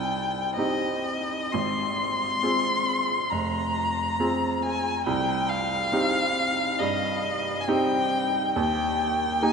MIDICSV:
0, 0, Header, 1, 3, 480
1, 0, Start_track
1, 0, Key_signature, -3, "minor"
1, 0, Tempo, 933126
1, 792, Time_signature, 4, 2, 24, 8
1, 792, Tempo, 888889
1, 2232, Tempo, 869565
1, 5169, End_track
2, 0, Start_track
2, 0, Title_t, "Violin"
2, 0, Program_c, 0, 40
2, 0, Note_on_c, 0, 79, 48
2, 294, Note_off_c, 0, 79, 0
2, 297, Note_on_c, 0, 75, 53
2, 785, Note_on_c, 0, 84, 61
2, 793, Note_off_c, 0, 75, 0
2, 1742, Note_on_c, 0, 82, 57
2, 1750, Note_off_c, 0, 84, 0
2, 2463, Note_on_c, 0, 80, 57
2, 2471, Note_off_c, 0, 82, 0
2, 2703, Note_off_c, 0, 80, 0
2, 2707, Note_on_c, 0, 79, 58
2, 2942, Note_on_c, 0, 77, 71
2, 2950, Note_off_c, 0, 79, 0
2, 3660, Note_on_c, 0, 75, 63
2, 3668, Note_off_c, 0, 77, 0
2, 4109, Note_on_c, 0, 80, 48
2, 4117, Note_off_c, 0, 75, 0
2, 4149, Note_on_c, 0, 79, 66
2, 4158, Note_off_c, 0, 80, 0
2, 4632, Note_off_c, 0, 79, 0
2, 4635, Note_on_c, 0, 79, 61
2, 5113, Note_on_c, 0, 80, 68
2, 5122, Note_off_c, 0, 79, 0
2, 5169, Note_off_c, 0, 80, 0
2, 5169, End_track
3, 0, Start_track
3, 0, Title_t, "Grand piano"
3, 0, Program_c, 1, 0
3, 0, Control_c, 1, 64, 127
3, 0, Note_on_c, 1, 36, 41
3, 284, Note_off_c, 1, 36, 0
3, 295, Note_on_c, 1, 60, 29
3, 300, Note_on_c, 1, 63, 29
3, 301, Note_on_c, 1, 67, 33
3, 769, Note_off_c, 1, 60, 0
3, 771, Note_off_c, 1, 63, 0
3, 772, Note_off_c, 1, 67, 0
3, 791, Note_on_c, 1, 32, 43
3, 802, Control_c, 1, 64, 0
3, 886, Control_c, 1, 64, 127
3, 1260, Note_off_c, 1, 32, 0
3, 1272, Note_on_c, 1, 60, 30
3, 1274, Note_on_c, 1, 65, 32
3, 1276, Note_on_c, 1, 68, 34
3, 1729, Note_off_c, 1, 60, 0
3, 1730, Note_off_c, 1, 65, 0
3, 1731, Note_off_c, 1, 68, 0
3, 1751, Note_on_c, 1, 29, 41
3, 1760, Control_c, 1, 64, 0
3, 1852, Control_c, 1, 64, 127
3, 2218, Note_off_c, 1, 29, 0
3, 2228, Note_on_c, 1, 60, 33
3, 2228, Note_on_c, 1, 65, 35
3, 2230, Note_on_c, 1, 68, 35
3, 2687, Note_off_c, 1, 60, 0
3, 2687, Note_off_c, 1, 65, 0
3, 2688, Note_off_c, 1, 68, 0
3, 2706, Note_on_c, 1, 36, 46
3, 2720, Control_c, 1, 64, 0
3, 2797, Control_c, 1, 64, 127
3, 3166, Note_off_c, 1, 36, 0
3, 3179, Note_on_c, 1, 60, 35
3, 3183, Note_on_c, 1, 63, 36
3, 3184, Note_on_c, 1, 67, 39
3, 3641, Note_off_c, 1, 60, 0
3, 3643, Note_off_c, 1, 63, 0
3, 3644, Note_off_c, 1, 67, 0
3, 3663, Note_on_c, 1, 43, 44
3, 4134, Note_off_c, 1, 43, 0
3, 4149, Note_on_c, 1, 60, 40
3, 4152, Note_on_c, 1, 63, 40
3, 4153, Note_on_c, 1, 67, 45
3, 4613, Note_off_c, 1, 60, 0
3, 4614, Note_off_c, 1, 63, 0
3, 4615, Note_off_c, 1, 67, 0
3, 4635, Note_on_c, 1, 39, 58
3, 4646, Control_c, 1, 64, 0
3, 4746, Control_c, 1, 64, 127
3, 5099, Note_off_c, 1, 39, 0
3, 5112, Note_on_c, 1, 58, 44
3, 5114, Note_on_c, 1, 63, 40
3, 5116, Note_on_c, 1, 67, 42
3, 5169, Note_off_c, 1, 58, 0
3, 5169, Note_off_c, 1, 63, 0
3, 5169, Note_off_c, 1, 67, 0
3, 5169, End_track
0, 0, End_of_file